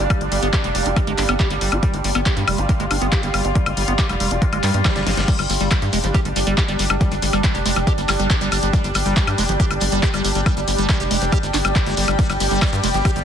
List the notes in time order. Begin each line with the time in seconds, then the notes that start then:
Already playing: G3 D4 G4 D5 F5
0.10 G3, kick, closed hi-hat, high woodblock
0.21 G1 G#3, closed hi-hat
0.32 G1 G3, open hi-hat
0.42 G1 B3, closed hi-hat
0.53 G4, kick, clap, closed hi-hat, high woodblock
0.64 F1 G3, closed hi-hat
0.75 F1 G3, open hi-hat
0.86 F1 G4, closed hi-hat
0.96 G#3, kick, closed hi-hat, high woodblock
1.07 G1 G#3, closed hi-hat
1.18 G1 D4, clap, open hi-hat
1.29 G1 B3, closed hi-hat, high woodblock
1.40 G4, kick, clap, closed hi-hat
1.50 G1 G3, closed hi-hat
1.61 G1 G3, open hi-hat
1.72 G1 G4, closed hi-hat, high woodblock
1.83 G3 F4, kick, closed hi-hat
1.94 G1 G#3, closed hi-hat
2.04 G1 G3, open hi-hat
2.15 G1 B3, closed hi-hat, high woodblock
2.26 G4, kick, clap, closed hi-hat
2.37 G2 G3, closed hi-hat
2.48 F1 G3, open hi-hat, high woodblock
2.58 G1 G4, closed hi-hat
2.69 G#3, kick, closed hi-hat
2.80 G1 G#3, closed hi-hat
2.91 G1 D4, open hi-hat, high woodblock
3.02 G1 B3, closed hi-hat
3.12 G4, kick, clap, closed hi-hat
3.23 G1 G3, closed hi-hat
3.34 G1 G3, open hi-hat, high woodblock
3.45 G1 G4, closed hi-hat
3.55 G3, kick, closed hi-hat
3.66 G1 G#3, closed hi-hat, high woodblock
3.77 G1 G3, open hi-hat
3.88 G1 B3, closed hi-hat
3.99 G4, kick, clap, closed hi-hat
4.09 F1 G3, closed hi-hat, high woodblock
4.20 F1 G3, open hi-hat
4.31 F1 G4, closed hi-hat
4.42 G#3, kick, closed hi-hat, swell
4.53 G1 G#3, closed hi-hat, high woodblock
4.63 G2 G3, clap, open hi-hat
4.74 G2 B3, closed hi-hat
4.85 F3, kick, snare, clap, closed hi-hat, high woodblock
4.96 G1 G3, snare, closed hi-hat
5.07 G1 G#3, snare, open hi-hat
5.17 G1 G3, snare, closed hi-hat
5.28 G3 D4 G4, kick, closed hi-hat, crash, shekere
5.39 G1 G3, closed hi-hat, high woodblock, shekere
5.49 G1 G3, open hi-hat, shekere
5.60 G1 G3, closed hi-hat, shekere
5.71 G3, kick, clap, closed hi-hat, high woodblock, shekere
5.82 G2 G4, closed hi-hat, shekere
5.93 F1 G#3, open hi-hat, shekere
6.01 G1 F3 D5, closed hi-hat, shekere
6.14 G4, kick, closed hi-hat, high woodblock, shekere
6.25 G1 G3, closed hi-hat
6.36 G1 G3, open hi-hat, shekere
6.46 G1 G3, closed hi-hat, shekere
6.58 G4, kick, clap, closed hi-hat, high woodblock, shekere
6.68 G1 G3 G5, closed hi-hat, shekere
6.79 G1 G3, open hi-hat, shekere
6.90 G1 G3, closed hi-hat, high woodblock, shekere
7.01 G3, kick, closed hi-hat, shekere
7.12 G1 G3, closed hi-hat, shekere
7.22 G1 G3, open hi-hat, shekere
7.33 G1 G3, closed hi-hat, high woodblock, shekere
7.44 kick, clap, closed hi-hat, shekere
7.54 F1 G4, closed hi-hat, shekere
7.66 F1 G#3, open hi-hat, shekere
7.76 F1 F3, closed hi-hat, high woodblock, shekere
7.87 G4, kick, closed hi-hat, shekere
7.98 G1 G3, closed hi-hat, shekere
8.09 G1 G3, clap, open hi-hat, high woodblock, shekere
8.19 G1 G3, closed hi-hat, shekere
8.30 G4, kick, clap, closed hi-hat, shekere
8.41 G1 G3, closed hi-hat, shekere
8.52 G1 G3, open hi-hat, high woodblock, shekere
8.62 G1 G3, closed hi-hat, shekere
8.73 G3, kick, closed hi-hat, shekere
8.84 G1 G3, closed hi-hat, shekere
8.95 G1 G3, open hi-hat, high woodblock, shekere
9.05 G1 G3, closed hi-hat, shekere
9.16 kick, clap, closed hi-hat, shekere
9.27 G2 G4, closed hi-hat, high woodblock, shekere
9.38 F1 G#3, open hi-hat, shekere
9.48 G1 F3, closed hi-hat, shekere
9.60 G4, kick, closed hi-hat, shekere
9.71 G1 G3, closed hi-hat, high woodblock
9.81 G1 G3, open hi-hat, shekere
9.92 G1 G3, closed hi-hat, shekere
10.03 G4, kick, clap, closed hi-hat, shekere
10.14 G1 G3, closed hi-hat, high woodblock, shekere
10.24 G1 G3, open hi-hat, shekere
10.35 G1 G3, closed hi-hat, shekere
10.46 G3, kick, closed hi-hat, high woodblock, shekere
10.57 G1 G3, closed hi-hat, shekere
10.68 G1 G3, open hi-hat, shekere
10.78 G1 G3, closed hi-hat, shekere
10.89 G3, kick, clap, closed hi-hat, high woodblock, shekere
11.00 F1 G4, closed hi-hat, shekere
11.11 F1 G#3, open hi-hat, shekere
11.22 F1 F3, closed hi-hat, shekere
11.31 G4, kick, closed hi-hat, high woodblock, shekere
11.43 G1 G3, closed hi-hat, shekere
11.54 G1 D4, clap, open hi-hat, shekere
11.65 G1 G3, closed hi-hat, high woodblock, shekere
11.76 G3, kick, clap, closed hi-hat, shekere
11.86 G1 G#3, closed hi-hat, shekere
11.97 G1 G3, open hi-hat, shekere
12.08 G1 G3, closed hi-hat, high woodblock, shekere
12.19 G3 G4, kick, closed hi-hat, ride, shekere
12.30 G1 G3, closed hi-hat, high woodblock, shekere
12.40 G1 G3, open hi-hat, ride, shekere
12.51 G1 G3, closed hi-hat, shekere
12.62 kick, clap, closed hi-hat, ride, high woodblock, shekere
12.73 G2 G4, closed hi-hat, shekere
12.83 F1 G#3, open hi-hat, ride, shekere
12.94 G1 F3, closed hi-hat, shekere
13.05 G4, kick, closed hi-hat, ride, high woodblock, shekere
13.16 G1 G3, closed hi-hat